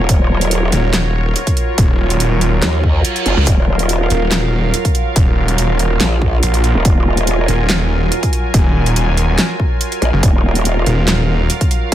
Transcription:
Already playing: F#3 F4 A#4 C#5
0.09 D#1, kick, closed hi-hat
0.41 closed hi-hat
0.51 closed hi-hat
0.72 D#1, closed hi-hat
0.93 snare, clap, closed hi-hat
1.36 closed hi-hat
1.47 kick, closed hi-hat
1.57 closed hi-hat
1.78 D#1, kick, closed hi-hat
2.10 closed hi-hat
2.20 D#1, closed hi-hat
2.41 closed hi-hat
2.62 D#2, snare, clap, closed hi-hat, reverse cymbal
2.84 kick
3.05 closed hi-hat
3.16 closed hi-hat
3.26 F#1, closed hi-hat
3.37 C#2
3.47 D#1 F5, kick, closed hi-hat
3.79 closed hi-hat
3.89 closed hi-hat
4.10 D#1, closed hi-hat
4.31 snare, clap, closed hi-hat
4.74 closed hi-hat
4.85 kick, closed hi-hat
4.95 closed hi-hat
5.16 D#1, kick, closed hi-hat
5.48 closed hi-hat
5.58 D#1, closed hi-hat
5.79 closed hi-hat
6.00 A#1, snare, clap, closed hi-hat
6.22 kick
6.43 A#1, closed hi-hat
6.54 closed hi-hat
6.64 closed hi-hat
6.75 D#1
6.85 D#1 G#5, kick, closed hi-hat
7.17 closed hi-hat
7.27 closed hi-hat
7.48 D#1, closed hi-hat
7.69 snare, clap, closed hi-hat
8.12 closed hi-hat
8.23 kick, closed hi-hat
8.33 closed hi-hat
8.54 D#1, kick, closed hi-hat
8.86 closed hi-hat
8.96 D#1, closed hi-hat
9.17 closed hi-hat
9.38 snare, clap, closed hi-hat
9.60 kick
9.81 closed hi-hat
9.92 closed hi-hat
10.02 A#1, closed hi-hat
10.13 F#1
10.23 D#1 F5, kick, closed hi-hat
10.55 closed hi-hat
10.65 closed hi-hat
10.86 D#1, closed hi-hat
11.08 snare, clap, closed hi-hat
11.50 closed hi-hat
11.61 kick, closed hi-hat
11.71 closed hi-hat

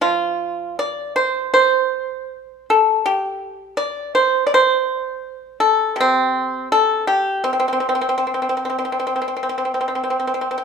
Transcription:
0.01 F3 F4
0.79 D5
1.16 C5
1.54 C5
2.70 A4
3.06 G4
3.77 D5
4.15 C5
4.47 D5
4.54 C5
5.60 A4
5.96 C3
6.00 C4
6.72 A4
7.07 G4
7.44 C4
7.53 C4
7.60 C4
7.68 C4
7.73 C4
7.80 C4
7.89 C4
7.95 C4
8.01 C4
8.09 C4
8.18 C4
8.27 C4
8.34 C4
8.42 C4
8.49 C4
8.57 C4
8.65 C4
8.70 C4
8.79 C4
8.85 C4
8.92 C4
8.99 C4
9.07 C4
9.16 C4
9.22 C4
9.28 C4
9.37 C4
9.43 C4
9.49 C4
9.58 C4
9.65 C4
9.74 C4
9.81 C4
9.88 C4
9.95 C4
10.04 C4
10.10 C4
10.20 C4
10.27 C4
10.34 C4
10.41 C4
10.51 C4
10.58 C4

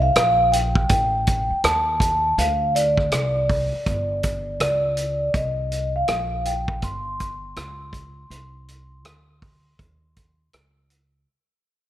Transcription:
Already playing: C2
0.02 F5
0.16 A#1, cross-stick, closed hi-hat
0.52 G5, closed hi-hat
0.75 kick
0.89 A1 G5, kick, closed hi-hat
1.27 kick, closed hi-hat
1.50 muted upright bass stroke
1.64 D#2 A5, cross-stick, closed hi-hat
2.00 kick, closed hi-hat
2.38 D2 F5, closed hi-hat
2.75 D5, closed hi-hat
2.98 kick, cross-stick
3.12 C2, cross-stick, closed hi-hat
3.50 kick, open hi-hat
3.72 muted upright bass stroke
3.86 G1, kick, closed hi-hat
4.23 kick, closed hi-hat
4.60 C#2 D5, cross-stick, closed hi-hat
4.97 closed hi-hat
5.34 C2 D#5, kick, closed hi-hat
5.72 closed hi-hat
5.96 F5
6.08 A#1, cross-stick, closed hi-hat
6.45 G5, closed hi-hat
6.68 kick
6.82 G1 C6, kick, closed hi-hat
7.20 kick, closed hi-hat
7.56 C#2, cross-stick, closed hi-hat
7.93 kick, closed hi-hat
8.30 C2, closed hi-hat
8.68 closed hi-hat
9.05 D2, cross-stick, closed hi-hat
9.42 kick, open hi-hat
9.79 D#2, kick, closed hi-hat
10.16 kick, closed hi-hat
10.53 C#2, cross-stick, closed hi-hat
10.90 closed hi-hat

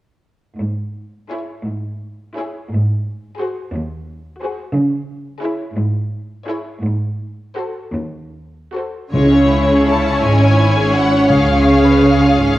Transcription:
0.59 G#2
1.31 E4 G#4 C#5
1.67 G#2
2.37 E4 G#4 C#5
2.71 G#2
3.40 F#4 G#4 C5
3.75 D#2
4.42 F#4 G#4 C5
4.76 C#3
5.42 E4 G#4 C#5
5.76 G#2
6.48 E4 G#4 C#5
6.82 G#2
7.57 F#4 A4 C5
7.94 D#2
8.76 F#4 A4 C5
9.13 C#2 C#3 G#3 C#4 E4 C#5
9.32 C#4
9.49 E4
9.67 G#4
9.85 E4 A5
10.03 C#4
10.21 G#1 G#2 G#3 G#5
10.43 C#4
10.59 E4
10.77 G#4
10.94 E4 F#5
11.12 C#4
11.28 C#2 C#3 C#4 G#4 F5
11.48 F4
11.68 G#4
11.86 B4
12.03 G#4
12.22 F4
12.37 G#1 G#2 C#4

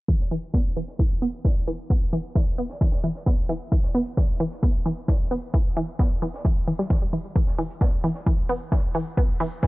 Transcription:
0.08 E3, kick, tambourine
0.20 snare
0.31 E3, tambourine
0.43 closed hi-hat
0.54 B3, kick, snare, tambourine
0.77 E3, tambourine
0.88 snare
0.99 E3, kick, open hi-hat
1.11 closed hi-hat
1.22 B3, tambourine
1.45 E3, kick, snare, tambourine
1.67 E3, tambourine
1.90 B3, kick, tambourine
2.13 E3, tambourine
2.35 E3, kick, snare, tambourine
2.47 closed hi-hat
2.58 B3, tambourine
2.70 snare
2.80 E3, kick, snare, tambourine
2.92 snare, tambourine
3.04 E3, tambourine
3.15 snare
3.26 B3, kick, snare, tambourine
3.49 E3, tambourine
3.71 E3, kick, tambourine
3.83 snare
3.94 B3, tambourine
4.06 closed hi-hat
4.17 E3, kick, snare, tambourine
4.40 E3, tambourine
4.52 snare
4.63 B3, kick, open hi-hat
4.75 closed hi-hat
4.85 E3, tambourine
5.08 E3, kick, snare, tambourine
5.31 B3, tambourine
5.54 E3, kick, tambourine
5.77 E3, tambourine
5.99 B3, kick, snare, tambourine
6.11 closed hi-hat
6.22 E3, tambourine
6.34 snare
6.45 E3, kick, tambourine
6.67 E3, tambourine
6.79 G3, snare
6.90 E3, kick, snare, tambourine
7.13 E3, tambourine
7.36 E3, kick, tambourine
7.47 snare
7.58 E3, open hi-hat, tambourine
7.70 closed hi-hat
7.80 B3, kick, snare, tambourine
8.04 E3, open hi-hat, tambourine
8.15 snare
8.26 E3, kick, open hi-hat
8.37 closed hi-hat
8.49 B3, open hi-hat, tambourine
8.72 E3, kick, snare, tambourine
8.95 E3, open hi-hat, tambourine
9.17 B3, kick, tambourine
9.40 E3, open hi-hat, tambourine
9.62 E3, kick, snare, tambourine

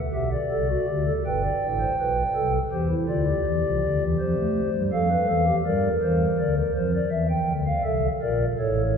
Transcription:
0.13 B1 B2 G4 E5
0.32 D5
0.51 C2 C3 A4
0.69 F#4
0.87 D2 D3 G4
1.07 A4
1.26 G1 G2 B4 G5
1.44 D5
1.62 A1 A2
1.80 C5
2.00 B1 B2 B4
2.35 C2 C3 A4
2.71 E2 E3 G4 C5
2.90 E4
3.08 D2 D3 F4 D5
3.28 G4
3.46 E2 E3
3.64 C2 C3
3.83 D2 D3
4.01 E2 E3
4.19 F2 F3 C5
4.38 A3
4.74 G2 G3
4.93 F2 F3 A4 F5
5.10 B4
5.29 E2 E3 A4
5.47 G4
5.66 G2 G3 A#4 D5
6.02 E2 E3 C5
6.38 D2 D3 D5
6.58 A#4
6.76 F2 F3 C5
6.94 D5
7.11 E2 E3 E5
7.30 G5
7.48 D2 D3
7.67 F5
7.84 C2 C3 A4 E5
8.22 A#1 A#2 A#4 D5
8.58 A1 A2 A4 C#5

